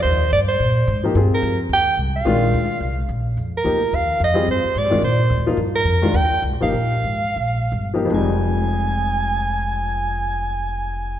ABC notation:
X:1
M:4/4
L:1/8
Q:"Swing" 1/4=217
K:Eb
V:1 name="Soprano saxophone"
c2 d c4 z | z B2 z g2 z f- | f6 z2 | z B3 f2 e2 |
c2 d2 c3 z | z B3 g2 z f- | f6- f z | a8- |
a8 |]
V:2 name="Upright piano"
z6 z [F,B,EG] | [CFGA]3 z4 z | [E,A,DF]3 z4 z | z2 [F,B,EG] z4 [G,CFA] |
z3 [E,A,DF] z3 [F,B,EF] | z3 [E,A,DF] z3 [F,B,EG] | z6 z [F,B,EG] | [F,,F,G,A,E]8- |
[F,,F,G,A,E]8 |]
V:3 name="Upright bass" clef=bass
E,,2 G,,2 B,,2 A,,2 | G,, z F,,2 E,,2 C,,2 | B,,,2 D,,2 C,,2 B,,,2 | F,,2 D,,2 E,,2 F,,2 |
G,, z (3A,, G,, F,, B,,2 (3E,, B,,, G,,, | G,,2 F,,2 E,, z (3C,, B,,, G,,, | B,,,2 A,,,2 B,,,2 G,,,2 | F,,,8- |
F,,,8 |]